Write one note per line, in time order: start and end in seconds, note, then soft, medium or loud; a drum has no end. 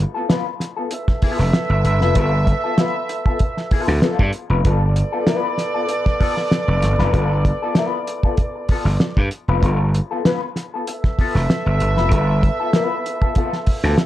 0.14 0.25 B3 medium
0.14 0.25 F4 medium
0.14 0.24 A4 medium
0.29 0.43 B3 medium
0.29 0.44 F4 medium
0.29 0.44 B4 medium
0.29 snare loud
0.29 closed hi-hat medium
0.60 muted clean electric guitar stroke soft
0.60 snare soft
0.60 closed hi-hat medium
0.76 0.88 B3 medium
0.76 0.87 F4 medium
0.76 0.87 A4 medium
0.91 4.31 B3 medium
0.91 4.31 A4 medium
0.91 4.30 E5 loud
0.91 muted clean electric guitar stroke soft
0.91 closed hi-hat medium
1.08 muted clean electric guitar stroke soft
1.08 kick loud
1.08 snare soft
1.22 1.43 B3 medium
1.22 1.39 F4 medium
1.22 1.38 A4 medium
1.22 muted slap bass stroke soft
1.22 kick medium
1.22 open hi-hat medium
1.39 1.50 F1 medium
1.39 muted clean electric guitar stroke soft
1.39 snare soft
1.53 muted clean electric guitar stroke soft
1.53 snare loud
1.53 closed hi-hat medium
1.70 1.81 G1 medium
1.70 muted clean electric guitar stroke medium
1.84 2.01 G1 medium
1.84 closed hi-hat medium
2.01 2.12 F1 loud
2.01 2.15 B3 medium
2.01 2.15 F4 medium
2.01 2.14 B4 medium
2.01 snare soft
2.15 2.52 G1 loud
2.15 2.30 B3 medium
2.15 2.31 F4 medium
2.15 2.31 A4 medium
2.15 kick loud
2.15 closed hi-hat loud
2.47 muted clean electric guitar stroke soft
2.47 kick loud
2.47 closed hi-hat medium
2.64 2.74 B3 medium
2.64 2.74 F4 medium
2.64 2.74 A4 medium
2.78 2.93 B3 medium
2.78 2.93 F4 medium
2.78 2.94 B4 medium
2.78 snare loud
2.78 closed hi-hat medium
3.09 muted clean electric guitar stroke soft
3.09 closed hi-hat medium
3.26 3.37 B3 medium
3.26 3.36 F4 medium
3.26 3.36 A4 medium
3.26 kick medium
3.39 muted clean electric guitar stroke soft
3.39 kick loud
3.39 closed hi-hat medium
3.57 muted clean electric guitar stroke soft
3.57 snare soft
3.71 3.92 B3 medium
3.71 3.89 F4 loud
3.71 3.87 A4 loud
3.71 muted slap bass stroke soft
3.71 kick loud
3.71 open hi-hat medium
3.88 3.99 D2 medium
3.88 muted clean electric guitar stroke soft
3.88 snare soft
4.02 4.17 B3 medium
4.02 4.18 F4 medium
4.02 4.18 A4 medium
4.02 snare loud
4.02 closed hi-hat medium
4.19 4.30 G2 medium
4.19 kick loud
4.33 muted clean electric guitar stroke soft
4.33 closed hi-hat medium
4.50 4.61 F1 medium
4.50 4.61 B3 medium
4.50 4.61 F4 medium
4.50 4.60 B4 medium
4.65 5.02 G1 loud
4.65 4.79 B3 medium
4.65 9.29 B3 medium
4.65 4.80 F4 medium
4.65 4.80 A4 medium
4.65 9.29 A4 medium
4.65 9.29 D5 loud
4.65 kick loud
4.65 closed hi-hat medium
4.96 muted clean electric guitar stroke soft
4.96 closed hi-hat medium
5.12 5.23 B3 medium
5.12 5.23 F4 medium
5.12 5.22 A4 medium
5.26 5.47 B3 medium
5.26 5.48 F4 medium
5.26 5.48 B4 medium
5.26 snare loud
5.26 closed hi-hat medium
5.58 muted clean electric guitar stroke soft
5.58 snare soft
5.58 closed hi-hat medium
5.74 5.85 B3 soft
5.74 5.85 F4 medium
5.74 5.84 A4 medium
5.89 muted clean electric guitar stroke soft
5.89 closed hi-hat medium
6.05 muted clean electric guitar stroke soft
6.05 kick medium
6.05 snare soft
6.20 6.34 B3 medium
6.20 6.35 F4 medium
6.20 6.35 A4 loud
6.20 kick medium
6.20 open hi-hat medium
6.36 muted clean electric guitar stroke soft
6.36 snare soft
6.51 muted clean electric guitar stroke soft
6.51 snare loud
6.51 closed hi-hat medium
6.68 6.79 F1 medium
6.68 muted clean electric guitar stroke soft
6.82 6.96 G1 medium
6.82 snare soft
6.82 closed hi-hat medium
6.99 7.10 F1 medium
6.99 7.11 B3 medium
6.99 7.12 F4 medium
6.99 7.12 B4 medium
6.99 snare soft
7.12 7.50 G1 loud
7.12 7.27 B3 medium
7.12 7.28 F4 medium
7.12 7.28 A4 medium
7.12 kick loud
7.12 closed hi-hat medium
7.45 muted clean electric guitar stroke soft
7.45 kick loud
7.45 closed hi-hat medium
7.62 7.72 B3 medium
7.62 7.72 F4 medium
7.62 7.72 A4 medium
7.75 7.97 B3 medium
7.75 7.97 F4 medium
7.75 7.98 B4 medium
7.75 snare loud
7.75 closed hi-hat medium
8.07 muted clean electric guitar stroke soft
8.07 closed hi-hat medium
8.23 8.35 B3 medium
8.23 8.34 F4 medium
8.23 8.34 A4 medium
8.23 kick medium
8.37 muted clean electric guitar stroke soft
8.37 kick loud
8.37 closed hi-hat medium
8.55 muted clean electric guitar stroke medium
8.69 8.84 B3 medium
8.69 8.85 F4 medium
8.69 8.85 A4 loud
8.69 muted slap bass stroke soft
8.69 kick medium
8.69 open hi-hat medium
8.85 8.96 G1 medium
8.85 muted clean electric guitar stroke soft
8.85 snare soft
9.00 muted clean electric guitar stroke soft
9.00 snare loud
9.00 closed hi-hat medium
9.17 9.28 G2 medium
9.17 muted clean electric guitar stroke medium
9.17 kick loud
9.31 closed hi-hat medium
9.48 9.59 F1 medium
9.48 9.62 B3 medium
9.48 9.62 F4 medium
9.48 9.61 B4 medium
9.63 9.99 G1 loud
9.63 9.77 B3 medium
9.63 9.78 F4 medium
9.63 9.78 A4 medium
9.63 kick loud
9.63 closed hi-hat medium
9.94 muted clean electric guitar stroke medium
9.94 closed hi-hat medium
10.11 10.21 B3 medium
10.11 10.21 F4 medium
10.11 10.21 A4 medium
10.25 10.39 B3 medium
10.25 10.40 F4 medium
10.25 10.40 B4 loud
10.25 snare loud
10.25 closed hi-hat medium
10.56 muted clean electric guitar stroke soft
10.56 snare soft
10.56 closed hi-hat medium
10.74 10.84 B3 medium
10.74 10.84 F4 medium
10.74 10.83 A4 medium
10.87 14.06 B3 medium
10.87 14.06 A4 medium
10.87 14.06 E5 loud
10.87 muted clean electric guitar stroke soft
10.87 closed hi-hat medium
11.04 muted clean electric guitar stroke soft
11.04 kick medium
11.04 snare soft
11.19 11.33 B3 medium
11.19 11.34 F4 medium
11.19 11.34 A4 loud
11.19 muted slap bass stroke soft
11.19 kick medium
11.19 open hi-hat medium
11.35 11.46 F1 medium
11.35 muted clean electric guitar stroke soft
11.35 snare soft
11.50 muted clean electric guitar stroke soft
11.50 snare loud
11.50 closed hi-hat medium
11.66 11.77 G1 medium
11.66 muted clean electric guitar stroke medium
11.80 11.97 G1 medium
11.80 closed hi-hat medium
11.97 12.08 F1 medium
11.97 12.11 B3 medium
11.97 12.10 F4 medium
11.97 12.10 B4 medium
11.97 snare soft
12.12 12.48 G1 loud
12.12 12.26 B3 medium
12.12 12.27 F4 medium
12.12 12.27 A4 medium
12.12 kick loud
12.12 closed hi-hat loud
12.43 muted clean electric guitar stroke soft
12.43 kick loud
12.43 closed hi-hat medium
12.60 12.70 B3 medium
12.60 12.70 F4 medium
12.60 12.69 A4 medium
12.73 12.95 B3 medium
12.73 12.95 F4 medium
12.73 12.96 B4 medium
12.73 snare loud
12.73 closed hi-hat medium
13.06 muted clean electric guitar stroke soft
13.06 closed hi-hat medium
13.22 13.32 B3 soft
13.22 13.32 F4 medium
13.22 13.32 A4 medium
13.22 kick medium
13.35 13.51 B3 medium
13.35 13.51 F4 medium
13.35 13.52 A4 medium
13.35 kick loud
13.35 closed hi-hat medium
13.53 snare soft
13.66 muted slap bass stroke soft
13.66 muted clean electric guitar stroke soft
13.66 kick medium
13.66 open hi-hat medium
13.83 13.95 D2 loud
13.83 13.95 B3 soft
13.83 13.95 F4 medium
13.83 13.95 A4 medium
13.83 snare soft
13.98 muted clean electric guitar stroke soft
13.98 snare loud
13.98 closed hi-hat medium